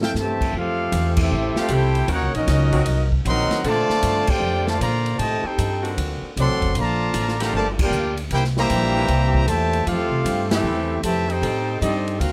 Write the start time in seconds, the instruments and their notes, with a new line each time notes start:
Already playing: upright bass A2, trombone section C3 F3 A3, saxophone section G3 A3 C4 F4
0.01 upright piano F3 A3 C4 E4 A4, trumpet section A4 E5 F5 G5, snare
0.14 upright bass G2, trombone section C3 A3, snare, hi-hat pedal
0.19 trombone section E3, trumpet section G4 C5 E5 A5
0.41 kick, crash
0.53 upright bass F2, trombone section A3 C4 F4, trumpet section C4 A4, kick
0.57 trumpet section G4 F5
0.92 upright bass E2, kick, hi-hat pedal, ride
1.16 trombone section A3 C4 E4, kick, crash
1.21 trumpet section C4 G4 A4 E5
1.31 upright bass A1
1.56 saxophone section F3 A3 E4 G4, trombone section A3 C4 F4, trumpet section C4 G4 A4 F5, muted upright bass stroke, snare
1.68 upright bass C2, trombone section C4 E4 G4, kick, hi-hat pedal, ride
1.72 trumpet section E4 A4 C5 G5
1.95 ride
2.07 upright bass D#2, saxophone section D#3 A#3 C#4 F#4, trombone section A#3 C#4 F#4, kick, ride
2.12 trumpet section D#4 A#4 C#5 F#5
2.21 upright bass C#2
2.34 upright bass A#1, trombone section F#3 A#3 D#4, trumpet section C#4 F#4 A#4 D#5, ride
2.47 upright bass C#2, kick, snare, hi-hat pedal, ride
2.71 saxophone section F#3 A#3 C4 F#4, kick, ride
2.86 upright bass C2, kick, ride
3.12 kick
3.25 upright bass A#1, trombone section D#3 F#3 C4, trumpet section A#4 D#5 F#5 C6, kick, hi-hat pedal, ride
3.50 muted upright bass stroke, snare, ride
3.64 upright bass A#2, saxophone section A#2 D3 C4 A4, trombone section D3 F3 A3, trumpet section F4 C5 D5 A5, kick, ride
3.89 muted upright bass stroke, snare
4.03 upright bass G2, kick, hi-hat pedal, ride
4.27 trombone section A3 D4 G4, trumpet section F4 C5 D5 G5, muted upright bass stroke, kick, crash
4.40 upright bass F2
4.67 trombone section D3 F3 A3, trumpet section F4 C5 D5 A5, snare
4.80 upright bass A#2, trombone section D3 F3 A#3, trumpet section F4 C5 D5 A#5, kick, hi-hat pedal, ride
5.06 ride
5.18 upright bass A2, trombone section C3 D#3 A3, trumpet section G4 C5 D#5 A5, kick, ride
5.43 trombone section C4 D#4 G4, trumpet section D#4 A4 C5 G5, muted upright bass stroke
5.58 upright bass G2, kick, hi-hat pedal, ride
5.82 saxophone section D3 A#3 C4 F#4, ride
5.97 upright bass D2, kick, ride
6.22 muted upright bass stroke
6.36 upright bass C2, trombone section F#3 A3 C4, trumpet section A4 D5 F#5 C6, kick, hi-hat pedal, ride
6.49 upright bass A1
6.61 upright bass F#1, kick, ride
6.75 upright bass A#1, trombone section D3 F3 A#3, kick, ride
6.80 trumpet section F4 D5 A5 A#5
7.14 upright bass A1, kick, hi-hat pedal, ride
7.28 snare
7.39 trombone section D3 F3 A#3, saxophone section F3 A3 A#3 G4, trumpet section A4 A#5, snare, ride
7.44 trumpet section F4 D5
7.53 upright bass G1, trombone section D3 F3 A3, trumpet section F4 A#4 D5 A5, kick
7.79 trombone section A#3 D4 G4, trumpet section F4 A#4 D5 G5, kick, crash
7.91 upright bass D2, hi-hat pedal
8.17 ride
8.31 upright bass C2, trombone section A#3 E4 G4, trumpet section E4 A#4 C5 G5, kick, ride
8.44 snare
8.57 trombone section E3 G3 A#3, trumpet section G4 C5 E5 A#5, snare
8.70 upright bass A#1, kick, hi-hat pedal, ride
8.94 saxophone section E3 A#3 C4 G4
9.08 upright bass C2, kick, ride
9.34 kick
9.46 upright bass E2, trombone section A#2 E3 A3, trumpet section G4 C5 E5 A5, hi-hat pedal, ride
9.73 ride
9.86 upright bass F2, trombone section A3 C4 F4, trumpet section C4 G4 A4 F5, kick, ride
9.97 upright bass E2
10.10 upright bass C2
10.25 upright bass G2, kick, hi-hat pedal, ride
10.49 saxophone section E3 A3 E4 G4, trombone section A3 C4 E4, trumpet section C4 G4 A4 E5, snare, ride
10.62 upright bass E2
11.02 upright bass F2, trombone section C3 E3 A3, trumpet section G4 C5 E5 A5, kick, hi-hat pedal, ride
11.28 trombone section C4 D#4 G4, trumpet section D#4 A4 C5 G5, ride
11.42 upright bass A2, saxophone section G3 C4 D#4 A4, kick, ride
11.81 upright bass G2, trombone section G3 C4 D#4, trumpet section C4 G4 A4 D#5, kick, hi-hat pedal, ride
12.08 ride
12.19 upright bass D2, trombone section A#3 C4 F#4, trumpet section C4 F#4 A#4 F5, kick, ride